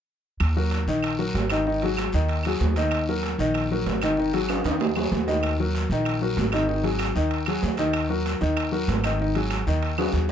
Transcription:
0.40 upright bass D#2, high timbale, long guiro, claves
0.57 grand piano F#3 F#4 A#4
0.71 high timbale, low timbale, short guiro
0.87 upright bass A#1, grand piano D#3 D#4 D#5, short guiro
1.03 high timbale, long guiro, claves
1.19 grand piano F#3 F#4 A#4
1.34 upright bass G#1, high timbale, low timbale, short guiro
1.50 grand piano D#3 D#4 D#5, high timbale, short guiro, claves
1.66 grand piano D#3 D#4 D#5, long guiro
1.82 grand piano F#3 F#4 G#4, high timbale
1.97 high timbale, low timbale, short guiro, claves
2.12 upright bass D#2, grand piano D#3 D#4 D#5, short guiro
2.29 high timbale, long guiro
2.43 grand piano F#3 F#4 G#4, high timbale, claves
2.59 upright bass D#2, low timbale, short guiro
2.76 grand piano D#3 D#4 D#5, high timbale, short guiro
2.91 high timbale, long guiro, claves
3.09 grand piano F#3 F#4 A#4
3.23 high timbale, low timbale, short guiro
3.39 upright bass A#1, grand piano D#3 D#4 D#5, short guiro
3.54 high timbale, long guiro, claves
3.71 grand piano F#3 F#4 A#4
3.86 upright bass G#1, high timbale, low timbale, short guiro
4.02 grand piano D#3 D#4 D#5, high timbale, short guiro, claves
4.17 grand piano D#3 D#4 D#5, long guiro
4.33 grand piano F#3 F#4 G#4, high timbale
4.49 high timbale, short guiro, claves
4.64 upright bass D#2, grand piano D#3 D#4 D#5, high timbale, short guiro
4.80 low timbale, long guiro
4.96 grand piano F#3 F#4 G#4, low timbale, claves
5.12 upright bass D#2, low timbale, short guiro
5.28 grand piano D#3 D#4 D#5, low timbale, short guiro
5.43 high timbale, long guiro, claves
5.60 grand piano F#3 F#4 A#4
5.75 high timbale, low timbale, short guiro
5.90 upright bass A#1, grand piano D#3 D#4 D#5, short guiro
6.05 high timbale, long guiro, claves
6.22 grand piano F#3 F#4 A#4
6.37 upright bass G#1, high timbale, low timbale, short guiro
6.52 grand piano D#3 D#4 D#5, high timbale, short guiro, claves
6.68 grand piano D#3 D#4 D#5, long guiro
6.83 grand piano F#3 F#4 G#4, high timbale
6.99 high timbale, low timbale, short guiro, claves
7.15 upright bass D#2, grand piano D#3 D#4 D#5, short guiro
7.31 high timbale, long guiro
7.46 grand piano F#3 F#4 G#4, high timbale, claves
7.62 upright bass D#2, low timbale, short guiro
7.77 grand piano D#3 D#4 D#5, high timbale, short guiro
7.93 high timbale, long guiro, claves
8.09 grand piano F#3 F#4 A#4
8.26 high timbale, low timbale, short guiro
8.41 upright bass D#2, grand piano D#3 D#4 D#5, short guiro
8.57 high timbale, long guiro, claves
8.72 grand piano F#3 F#4 A#4
8.88 upright bass G#1, high timbale, low timbale, short guiro
9.04 grand piano D#3 D#4 D#5, high timbale, short guiro, claves
9.20 grand piano D#3 D#4 D#5, long guiro
9.35 grand piano F#3 F#4 G#4, high timbale
9.50 high timbale, low timbale, short guiro, claves
9.67 upright bass D#2, grand piano D#3 D#4 D#5, short guiro
9.82 high timbale, long guiro
9.98 grand piano F#3 F#4 G#4, high timbale, claves
10.13 upright bass D#2, short guiro

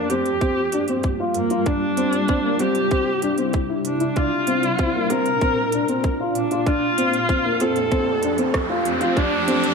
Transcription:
Already playing: ambient pad G2 G3 A#3 F4, viola D4
0.10 grand piano C4, viola G4, closed hi-hat
0.26 closed hi-hat
0.41 grand piano C4, kick, closed hi-hat
0.72 grand piano D4, closed hi-hat
0.88 grand piano C4, closed hi-hat
1.03 kick, closed hi-hat
1.20 grand piano F4
1.34 viola A#3, closed hi-hat
1.50 grand piano F4, closed hi-hat
1.66 ambient pad C3 D4 E4, grand piano D4, viola D4, kick, closed hi-hat
1.97 grand piano C4, closed hi-hat
2.13 closed hi-hat
2.28 grand piano C4, kick, closed hi-hat
2.44 grand piano A#3
2.59 grand piano C4, viola G4, closed hi-hat
2.75 closed hi-hat
2.91 grand piano C4, kick, closed hi-hat
3.22 grand piano D4, closed hi-hat
3.38 grand piano C4, closed hi-hat
3.53 kick, closed hi-hat
3.70 grand piano E4
3.85 viola D4, closed hi-hat
4.00 grand piano E4, closed hi-hat
4.16 ambient pad A#2 A#3 F4, grand piano D4, viola F4, kick, closed hi-hat
4.47 grand piano C4, closed hi-hat
4.63 closed hi-hat
4.79 grand piano C4, kick, closed hi-hat
4.95 grand piano A#3
5.10 grand piano C4, viola A#4, closed hi-hat
5.26 closed hi-hat
5.41 grand piano C4, kick, closed hi-hat
5.72 grand piano D4, closed hi-hat
5.88 grand piano C4, closed hi-hat
6.04 kick, closed hi-hat
6.20 grand piano F4
6.35 viola D4, closed hi-hat
6.51 grand piano F4, closed hi-hat
6.66 ambient pad F2 F3 A3 G4, grand piano D4, viola F4, kick, closed hi-hat, riser
6.98 grand piano C4, closed hi-hat
7.13 closed hi-hat
7.29 grand piano C4, kick, closed hi-hat
7.45 grand piano A#3
7.60 grand piano C4, viola A4, closed hi-hat
7.76 closed hi-hat
7.91 grand piano C4, kick, closed hi-hat
8.23 grand piano D4, closed hi-hat
8.38 grand piano C4, closed hi-hat
8.54 kick, cross-stick, closed hi-hat
8.70 grand piano F4
8.85 viola C4, closed hi-hat
9.01 grand piano F4, closed hi-hat
9.16 ambient pad G2 G3 A#3 F4, grand piano D4, viola D4, kick, closed hi-hat
9.48 grand piano C4, closed hi-hat
9.63 closed hi-hat

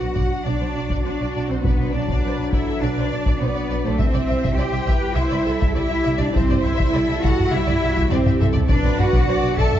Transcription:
Already playing: french horn section F#3 D4, cello section F#4, violin section F#5
0.01 double bass section B1
0.15 double bass section B1, violin section D5, taiko
0.43 double bass section B1, cello section D4, viola section F#4, violin section D5
0.60 double bass section B1, violin section C5
0.75 double bass section B1, violin section D5
0.90 double bass section B1, violin section D5, taiko
1.04 double bass section B1, cello section D4, violin section C5 D5
1.19 double bass section B1, violin section D5
1.35 double bass section B1, violin section D5
1.49 double bass section B1, cello section C4, violin section C5
1.63 double bass section B1, cello section B3, violin section B4 D5, taiko
1.79 double bass section B1, violin section C5
1.93 double bass section B1, cello section D4, violin section D5
1.98 violin section D5
2.08 double bass section B1, violin section D5, taiko
2.22 double bass section B1, viola section B4
2.26 violin section C5
2.37 double bass section B1
2.42 violin section D5
2.52 double bass section B1, cello section E4, viola section A4, violin section D5 E5, taiko
2.81 double bass section B1, cello section D4, viola section B4, violin section D5
2.97 double bass section B1, violin section C5
3.11 double bass section B1, viola section D5, violin section D5
3.26 double bass section B1, violin section D5, taiko
3.41 double bass section B1, cello section B3, violin section B4 C5
3.55 double bass section B1, violin section D5
3.70 double bass section B1, violin section D5
3.84 double bass section B1, cello section A3, violin section A4 C5
3.98 double bass section C2, french horn section G3 E4, cello section C4, violin section C5 E5, viola section E5, taiko
4.13 double bass section C2, violin section D5
4.28 double bass section C2, violin section E5
4.42 double bass section C2, violin section E5, taiko
4.57 double bass section C2, cello section G4, viola section C5, violin section D5
4.61 violin section G5
4.72 double bass section C2, violin section E5
4.86 double bass section C2, viola section B4, violin section E5, taiko
5.16 double bass section C2, cello section E4, viola section C5, violin section E5
5.31 double bass section C2, violin section D5
5.45 double bass section C2, viola section A4, violin section E5
5.60 double bass section C2, violin section E5, taiko
5.75 double bass section C2, cello section E4, viola section G4, violin section D5 E5
5.89 double bass section C2, violin section E5
6.02 double bass section C2, violin section E5
6.17 double bass section C2, cello section D4, violin section D5
6.22 violin section D5
6.34 double bass section C2, cello section C4, viola section C5, violin section C5 E5, taiko
6.49 double bass section C2, violin section D5, taiko low-mid
6.63 double bass section C2, cello section E4, violin section E5, taiko low-mid
6.77 double bass section C2, violin section E5, taiko
6.93 double bass section C2, viola section A4, violin section D5
7.08 double bass section C2, violin section E5
7.22 double bass section C2, cello section F#4, violin section E5 F#5, taiko
7.40 taiko low-mid
7.50 double bass section C2, cello section E4, viola section G4, violin section E5
7.67 double bass section C2, violin section D5, taiko low-mid
7.82 double bass section C2, viola section F#4, violin section E5
7.95 double bass section C2, violin section E5, taiko
8.11 double bass section C2, cello section C4, viola section G4, violin section C5 D5, taiko low-mid
8.25 double bass section C2, violin section E5, taiko low-mid
8.41 double bass section C2, viola section A4, violin section E5, taiko low-mid
8.53 double bass section C2, violin section D5, taiko low
8.68 double bass section B1, french horn section F#3 D4, cello section D4, viola section B4, violin section D5, taiko
8.84 double bass section B1, violin section C5, taiko low-mid
8.98 double bass section B1, cello section F#4, violin section D5 F#5, taiko low-mid
9.12 double bass section B1, violin section D5, taiko
9.27 double bass section B1, violin section C5, viola section D5
9.42 double bass section B1, violin section D5
9.56 double bass section B1, cello section A4, violin section D5 A5, viola section E5, taiko
9.73 taiko low-mid

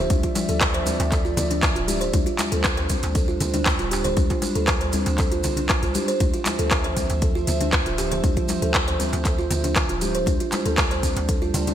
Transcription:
Already playing: analog synth pad F3 E5
0.10 808-style bass D2, kalimba D4, analog synth pad D5, kick, closed hi-hat, high conga, maracas
0.23 kalimba F4, kick, closed hi-hat, maracas
0.35 open hi-hat, djembe slap, high conga, maracas
0.49 808-style bass D2, kalimba A4, closed hi-hat, maracas
0.61 kick, cross-stick, clap, closed hi-hat, maracas
0.74 kalimba C5, closed hi-hat, djembe tone, maracas
0.86 kalimba C4, open hi-hat, high conga, djembe tone, djembe bass, maracas
1.00 808-style bass D2, closed hi-hat, djembe slap, maracas
1.12 kalimba A4, kick, clap, closed hi-hat, maracas
1.25 kalimba F4, maracas
1.37 808-style bass D2, open hi-hat, djembe tone, low conga, maracas
1.50 kalimba D4, closed hi-hat, low conga, maracas
1.63 kick, cross-stick, clap, closed hi-hat, maracas
1.76 808-style bass D1, kalimba F4, closed hi-hat, maracas
1.88 kalimba G4, open hi-hat, high conga, maracas
2.01 kalimba C5, closed hi-hat, maracas
2.13 808-style bass D2, analog synth pad G3 D4 C5, kalimba D4, kick, closed hi-hat, high conga, maracas
2.26 kalimba F4, closed hi-hat, maracas
2.39 clap, open hi-hat, djembe slap, high conga, maracas
2.52 808-style bass D2, kalimba A4, closed hi-hat, maracas
2.64 kick, cross-stick, clap, closed hi-hat, maracas
2.77 kalimba C5, closed hi-hat, djembe tone, maracas
2.89 kalimba C4, kick, open hi-hat, high conga, djembe tone, djembe bass, maracas
3.03 808-style bass D2, closed hi-hat, djembe slap, maracas
3.15 kalimba A4, kick, closed hi-hat, maracas
3.28 kalimba F4, maracas
3.40 808-style bass D2, open hi-hat, djembe tone, low conga, maracas
3.54 kalimba D4, closed hi-hat, high conga, low conga, maracas
3.66 kick, cross-stick, clap, closed hi-hat, djembe tone, maracas
3.79 808-style bass D1, kalimba F4, closed hi-hat, maracas
3.91 kalimba G4, open hi-hat, djembe slap, maracas
4.04 kalimba C5, closed hi-hat, djembe tone, low conga, maracas
4.17 808-style bass D2, kalimba D4, kick, closed hi-hat, high conga, maracas
4.30 kalimba F4, kick, closed hi-hat, djembe slap, maracas
4.42 open hi-hat, djembe slap, high conga, maracas
4.55 808-style bass D2, kalimba A4, closed hi-hat, maracas
4.68 kick, cross-stick, clap, closed hi-hat, maracas
4.81 kalimba C5, closed hi-hat, djembe tone, maracas
4.93 kalimba C4, open hi-hat, djembe tone, high conga, djembe bass, maracas
5.06 808-style bass D2, closed hi-hat, djembe slap, maracas
5.18 kalimba A4, kick, clap, closed hi-hat, maracas
5.32 kalimba F4, closed hi-hat, maracas
5.44 808-style bass C2, open hi-hat, djembe tone, low conga, maracas
5.57 kalimba D4, closed hi-hat, low conga, maracas
5.69 kick, cross-stick, clap, closed hi-hat, maracas
5.83 808-style bass C2, kalimba F4, closed hi-hat, maracas
5.94 kalimba G4, open hi-hat, high conga, maracas
6.08 kalimba C5, closed hi-hat, maracas
6.20 808-style bass D2, analog synth pad F3 E5, kalimba D4, kick, closed hi-hat, high conga, maracas
6.34 kalimba F4, closed hi-hat, maracas
6.46 clap, open hi-hat, djembe slap, high conga, maracas
6.59 808-style bass D2, kalimba A4, closed hi-hat, maracas
6.71 kick, cross-stick, clap, closed hi-hat, maracas
6.84 kalimba C5, closed hi-hat, djembe tone, maracas
6.97 kalimba C4, kick, open hi-hat, djembe tone, high conga, djembe bass, maracas
7.10 808-style bass D2, closed hi-hat, djembe slap, maracas
7.22 kalimba A4, kick, closed hi-hat, maracas
7.35 kalimba F4, maracas
7.47 808-style bass D2, open hi-hat, djembe tone, low conga, maracas
7.61 kalimba D4, closed hi-hat, high conga, low conga, maracas
7.72 kick, cross-stick, clap, closed hi-hat, djembe tone, maracas
7.86 808-style bass D1, kalimba F4, closed hi-hat, maracas
7.98 kalimba G4, open hi-hat, djembe slap, maracas
8.11 kalimba C5, closed hi-hat, djembe tone, low conga, maracas
8.24 808-style bass D2, kalimba D4, kick, closed hi-hat, high conga, maracas
8.37 kalimba F4, kick, closed hi-hat, maracas
8.48 open hi-hat, djembe slap, high conga, maracas
8.62 808-style bass D2, kalimba A4, closed hi-hat, maracas
8.74 kick, cross-stick, clap, closed hi-hat, maracas
8.88 kalimba C5, closed hi-hat, djembe tone, maracas
8.99 kalimba C4, open hi-hat, high conga, djembe tone, djembe bass, maracas
9.13 808-style bass D2, closed hi-hat, djembe slap, maracas
9.25 kalimba A4, kick, clap, closed hi-hat, maracas
9.38 kalimba F4, maracas
9.50 808-style bass D2, open hi-hat, djembe tone, low conga, maracas
9.64 kalimba D4, closed hi-hat, low conga, maracas
9.76 kick, cross-stick, clap, closed hi-hat, maracas
9.89 808-style bass D1, kalimba F4, closed hi-hat, maracas
10.01 kalimba G4, open hi-hat, high conga, maracas
10.14 kalimba C5, closed hi-hat, maracas
10.26 808-style bass D2, analog synth pad G3 D4, kalimba D4, kick, closed hi-hat, high conga, maracas
10.40 kalimba F4, closed hi-hat, maracas
10.52 clap, open hi-hat, djembe slap, high conga, maracas
10.66 808-style bass D2, kalimba A4, closed hi-hat, maracas
10.78 kick, cross-stick, clap, closed hi-hat, maracas
10.90 kalimba C5, closed hi-hat, djembe tone, maracas
11.02 kalimba C4, kick, open hi-hat, djembe tone, high conga, djembe bass, maracas
11.16 808-style bass D2, closed hi-hat, djembe slap, maracas
11.28 kalimba A4, kick, closed hi-hat, maracas
11.42 kalimba F4, maracas
11.54 808-style bass D2, open hi-hat, djembe tone, low conga, maracas
11.67 kalimba D4, closed hi-hat, high conga, low conga, maracas

